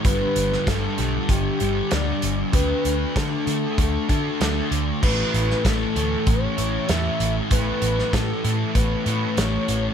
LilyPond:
<<
  \new Staff \with { instrumentName = "Soft synth lead" } { \time 4/4 \key a \mixolydian \tempo 4 = 97 b'4 a'4 g'4 d''8. r16 | b'4 a'4 a'4. r8 | b'4 a'4 cis''4 e''8. r16 | b'4 a'4 b'4 cis''8. r16 | }
  \new Staff \with { instrumentName = "Distorted electric guitar" } { \clef bass \time 4/4 \key a \mixolydian <g, d g>4 <g, d g>8 <d g>4 <d g>8 <g, d g>4 | <d a d'>4 <d a d'>8 <a d'>4 <a d'>8 <d a d'>4 | <a, e a>4 <a, e a>8 <e a>4 <e a>8 <a, e a>4 | <a, e a>4 <a, e a>8 <e a>4 <e a>8 <a, e a>4 | }
  \new Staff \with { instrumentName = "Picked electric bass" } { \clef bass \time 4/4 \key a \mixolydian g,,8 g,,8 g,,8 b,,8 g,,8 g,,8 d,8 g,,8 | d,8 d,8 d8 d8 d,8 d8 d,8 d,8 | a,,8 a,,8 a,,8 d,8 a,,8 a,,8 e,8 a,,8 | a,,8 a,,8 a,8 a,8 a,,8 a,8 a,,8 a,,8 | }
  \new DrumStaff \with { instrumentName = "Drums" } \drummode { \time 4/4 <hh bd>8 hh16 sn16 <hh bd sn>8 hh8 <hh bd>8 hh8 <hh sn>8 hh8 | <hh bd>8 hh8 <hh bd sn>8 hh8 <hh bd>8 <hh bd>8 <hh sn>8 hh8 | <cymc bd>8 hh16 sn16 <hh bd sn>8 hh8 <hh bd>8 hh8 <hh sn>8 hh8 | <hh bd>8 hh16 sn16 <hh bd sn>8 hh8 <hh bd>8 hh8 <hh sn>8 hh8 | }
>>